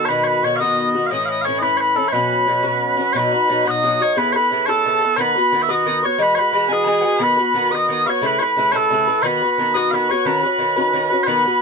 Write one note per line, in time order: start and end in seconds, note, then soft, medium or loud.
0.00 0.10 A5 medium
0.05 0.42 B2 medium
0.05 0.24 B4 medium
0.05 0.09 C#5 medium
0.05 0.28 B5 medium
0.10 0.44 D#3 medium
0.10 0.45 B3 medium
0.10 0.45 F#4 medium
0.24 0.44 B4 medium
0.24 0.27 C#5 medium
0.28 0.44 B5 medium
0.43 0.60 B2 medium
0.43 0.61 D#3 medium
0.43 0.60 B3 medium
0.43 0.56 C#5 medium
0.43 0.62 C#6 medium
0.47 0.59 F#4 medium
0.56 1.07 D#5 loud
0.56 0.60 F5 loud
0.60 0.96 B2 soft
0.60 0.96 D#3 medium
0.60 0.95 B3 medium
0.60 0.93 F#4 medium
0.60 0.89 D#6 medium
0.94 1.11 D#3 soft
0.94 1.12 B3 soft
0.94 1.11 F#4 medium
1.07 1.25 D#5 medium
1.07 1.10 F5 medium
1.11 1.44 A2 medium
1.11 1.46 E3 medium
1.11 1.46 C#4 medium
1.11 1.47 E4 medium
1.11 1.29 D#6 medium
1.25 1.41 D#5 medium
1.25 1.29 F5 medium
1.31 1.46 D#6 medium
1.41 1.58 C#5 medium
1.41 1.45 F5 medium
1.46 1.62 A2 medium
1.46 1.62 E3 medium
1.46 1.62 C#4 medium
1.46 1.61 E4 medium
1.58 1.95 E4 medium
1.58 1.63 D#5 medium
1.58 1.79 B5 medium
1.63 1.98 A2 medium
1.63 1.97 E3 medium
1.63 1.96 C#4 soft
1.63 1.77 B4 medium
1.77 1.96 B4 medium
1.77 1.80 C#5 medium
1.81 2.11 B5 medium
1.96 2.12 E3 soft
1.96 2.13 C#4 soft
1.96 2.13 E4 medium
1.96 2.08 A4 medium
2.08 2.12 C#5 medium
2.12 2.46 B2 medium
2.12 2.47 F#3 medium
2.12 2.48 C#4 medium
2.12 2.48 F#4 medium
2.12 3.13 B4 medium
2.12 2.95 B5 medium
2.47 2.64 B2 medium
2.47 2.63 F#3 medium
2.47 2.63 C#4 medium
2.47 2.62 F#4 medium
2.63 2.99 B2 medium
2.63 2.99 F#3 medium
2.63 2.98 C#4 medium
2.63 2.96 F#4 medium
2.97 3.14 F#3 soft
2.97 3.15 C#4 medium
2.97 3.14 F#4 medium
3.13 3.33 B2 medium
3.13 3.33 F#3 medium
3.13 3.32 D#4 medium
3.13 3.30 F#4 medium
3.13 3.68 B4 medium
3.13 3.16 C#5 medium
3.13 3.21 C#6 medium
3.20 3.62 B5 medium
3.31 3.49 D#4 soft
3.31 3.48 F#4 medium
3.35 3.48 F#3 soft
3.48 3.65 B2 medium
3.48 3.65 F#3 medium
3.48 3.65 D#4 medium
3.48 3.64 F#4 medium
3.65 3.82 B2 soft
3.65 3.83 F#3 medium
3.65 3.84 D#4 medium
3.65 3.83 F#4 medium
3.65 4.02 D#5 loud
3.65 3.72 F#6 medium
3.71 4.13 D#6 loud
3.83 4.00 B2 medium
3.83 4.00 F#3 medium
3.83 4.01 D#4 medium
3.83 3.99 F#4 medium
4.00 4.16 F#3 soft
4.00 4.17 D#4 soft
4.00 4.16 F#4 medium
4.00 4.18 C#5 medium
4.16 4.34 C#3 medium
4.16 4.35 B3 medium
4.16 4.34 E4 medium
4.16 4.32 A4 medium
4.16 4.32 B4 medium
4.16 4.34 B5 medium
4.32 4.51 E4 medium
4.32 4.50 A4 medium
4.32 4.66 B4 medium
4.32 4.36 C#5 medium
4.32 4.65 B5 medium
4.37 4.51 B3 soft
4.51 4.67 C#3 medium
4.51 4.68 B3 medium
4.51 4.67 E4 medium
4.51 4.67 A4 medium
4.66 4.86 B3 medium
4.66 4.86 E4 medium
4.66 4.85 A4 medium
4.66 5.16 A4 medium
4.66 4.69 C#5 medium
4.66 5.20 A5 medium
4.70 4.84 C#3 medium
4.86 5.02 C#3 medium
4.86 5.02 B3 medium
4.86 5.03 E4 medium
4.86 5.00 A4 medium
5.01 5.18 B3 soft
5.01 5.19 E4 soft
5.01 5.18 A4 soft
5.16 5.36 D#3 medium
5.16 5.36 B3 medium
5.16 5.36 F#4 medium
5.16 5.34 B4 medium
5.16 5.21 C#5 medium
5.16 5.62 B5 medium
5.21 5.62 B4 medium
5.35 5.52 B3 soft
5.35 5.53 F#4 soft
5.35 5.52 B4 medium
5.52 5.68 D#3 medium
5.52 5.69 B3 medium
5.52 5.68 F#4 medium
5.52 5.67 B4 medium
5.62 5.70 E5 medium
5.68 5.84 D#3 medium
5.68 5.86 B3 medium
5.68 5.87 F#4 medium
5.68 5.86 B4 medium
5.68 6.05 D#5 loud
5.68 5.75 D#6 medium
5.86 6.02 D#3 medium
5.86 6.03 B3 medium
5.86 6.03 F#4 medium
5.86 6.01 B4 medium
5.86 6.01 D#6 medium
6.02 6.18 F#4 soft
6.02 6.19 B4 medium
6.02 6.22 C#5 medium
6.02 6.17 C#6 medium
6.06 6.19 B3 soft
6.18 6.37 E3 medium
6.18 6.37 G#3 medium
6.18 6.37 F#4 medium
6.18 6.35 B4 medium
6.18 6.36 B5 medium
6.35 6.53 F#4 soft
6.35 6.53 B4 soft
6.35 6.39 C#5 medium
6.35 6.67 B5 medium
6.39 6.52 G#3 soft
6.39 6.73 B4 medium
6.52 6.69 E3 medium
6.52 6.69 G#3 medium
6.52 6.68 F#4 medium
6.52 6.67 B4 medium
6.68 6.84 E3 soft
6.68 6.86 G#3 soft
6.68 6.86 F#4 medium
6.68 6.87 B4 medium
6.68 6.86 G#5 medium
6.73 7.23 G#4 loud
6.85 7.03 E3 medium
6.85 7.03 G#3 medium
6.85 7.02 F#4 medium
6.85 7.00 B4 medium
6.85 7.03 G#5 medium
6.85 6.89 B5 medium
7.01 7.20 G#3 soft
7.01 7.20 F#4 soft
7.01 7.19 B4 medium
7.01 7.06 F#5 medium
7.01 7.21 G#5 medium
7.19 7.38 D#3 medium
7.19 7.38 B3 medium
7.19 7.38 F#4 medium
7.19 7.36 B4 medium
7.19 7.75 B4 medium
7.19 7.73 B5 medium
7.37 7.54 B3 soft
7.37 7.55 F#4 medium
7.37 7.54 B4 medium
7.54 7.71 D#3 medium
7.54 7.71 B3 medium
7.54 7.70 F#4 medium
7.54 7.70 B4 medium
7.71 7.87 D#3 medium
7.71 7.89 B3 soft
7.71 7.89 F#4 medium
7.71 7.89 B4 medium
7.71 7.89 D#6 loud
7.75 8.06 D#5 loud
7.89 8.05 D#3 medium
7.89 8.06 B3 medium
7.89 8.07 F#4 medium
7.89 8.04 B4 medium
7.89 8.09 D#6 medium
8.05 8.22 B3 soft
8.05 8.23 F#4 medium
8.05 8.22 B4 soft
8.05 8.10 F5 medium
8.05 8.21 C#6 medium
8.10 8.26 C#5 medium
8.22 8.40 C#3 medium
8.22 8.40 A3 medium
8.22 8.41 E4 medium
8.22 8.38 B4 medium
8.22 8.39 B5 medium
8.26 8.39 B4 medium
8.39 8.57 E4 soft
8.39 8.56 B4 medium
8.39 8.72 B4 medium
8.39 8.42 C#5 medium
8.39 8.44 C#6 medium
8.43 8.56 A3 soft
8.43 8.74 B5 medium
8.56 8.73 C#3 medium
8.56 8.73 A3 medium
8.56 8.73 E4 medium
8.56 8.72 B4 medium
8.72 8.89 C#3 soft
8.72 8.90 A3 medium
8.72 8.91 E4 medium
8.72 8.91 B4 medium
8.72 8.76 C#5 loud
8.72 9.22 A5 medium
8.76 9.22 A4 loud
8.90 9.07 C#3 medium
8.90 9.08 A3 medium
8.90 9.08 E4 medium
8.90 9.06 B4 medium
9.07 9.24 A3 soft
9.07 9.24 E4 soft
9.07 9.24 B4 soft
9.22 9.41 D#3 medium
9.22 9.42 B3 medium
9.22 9.42 F#4 medium
9.22 9.40 B4 medium
9.22 9.26 C#5 medium
9.22 9.51 B5 medium
9.26 9.76 B4 medium
9.41 9.58 B3 soft
9.41 9.59 F#4 soft
9.41 9.58 B4 medium
9.58 9.74 D#3 medium
9.58 9.75 B3 medium
9.58 9.75 F#4 medium
9.58 9.74 B4 medium
9.74 9.91 D#3 soft
9.74 9.92 B3 medium
9.74 9.93 F#4 medium
9.74 9.93 B4 medium
9.74 9.91 D#5 loud
9.74 9.91 D#6 medium
9.91 10.09 D#3 medium
9.91 10.09 B3 medium
9.91 10.10 F#4 medium
9.91 10.11 B4 medium
9.91 9.94 F5 medium
9.96 10.08 B4 medium
10.09 10.26 B3 soft
10.09 10.26 F#4 soft
10.09 10.25 B4 medium
10.09 10.26 C#5 medium
10.09 10.27 C#6 medium
10.25 10.43 D#3 medium
10.25 10.44 C#4 medium
10.25 10.44 F#4 medium
10.25 11.23 B4 medium
10.25 10.42 B4 medium
10.25 10.41 A#5 medium
10.41 10.59 B4 medium
10.41 11.10 B5 medium
10.45 10.58 C#4 soft
10.45 10.60 F#4 medium
10.58 10.75 D#3 medium
10.58 10.76 C#4 medium
10.58 10.75 F#4 medium
10.58 10.75 B4 medium
10.76 10.92 D#3 medium
10.76 10.93 C#4 medium
10.76 10.94 F#4 medium
10.76 10.94 B4 medium
10.93 11.10 D#3 medium
10.93 11.10 C#4 medium
10.93 11.10 F#4 medium
10.93 11.09 B4 medium
11.10 11.28 C#4 medium
11.10 11.27 F#4 soft
11.10 11.26 B4 medium
11.23 11.62 B4 medium
11.23 11.27 C#5 medium
11.23 11.62 B5 medium
11.27 11.45 D#3 medium
11.27 11.45 B3 medium
11.27 11.46 F#4 medium
11.27 11.44 B4 medium
11.45 11.61 B3 soft
11.45 11.62 F#4 soft
11.45 11.61 B4 medium